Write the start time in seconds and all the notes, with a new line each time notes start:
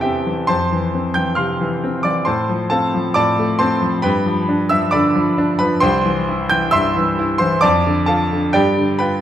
Already playing: E2 C3 E3 C4 E4 G4 A4 C5 E5 A5
0.00 C4 G4 E5 G5
0.26 E3
0.47 F2 C5 A5 C6
0.72 E3
0.94 C4
1.14 E3 G5 G6
1.35 C3 F5 C6 F6
1.61 E3
1.84 C4
2.03 E3 D5 D6
2.25 A2 C5 A5 C6
2.49 F3
2.70 C4 A4 F5 A5
2.94 F3
3.14 A2 D5 A5 D6
3.39 A3
3.59 C4 C5 A5 C6
3.82 F3
4.02 G2 B4 G5 B5
4.26 F3
4.49 D4
4.69 F3 E5 E6
4.91 D3 D5 B5 D6
5.16 F3
5.38 D4
5.59 F3 B4 B5
5.80 C2 C5 G5 C6
6.06 E3
6.29 E4
6.50 E3 G5 G6
6.71 G2 E5 C6 E6
6.96 E3
7.19 E4
7.38 E3 C5 C6
7.61 F2 D5 A5 D6
7.86 D3
8.06 F4 A4 F5 A5
8.32 D3
8.53 G2 G4 D5 G5
8.78 D3
8.99 F4 B4 G5 B5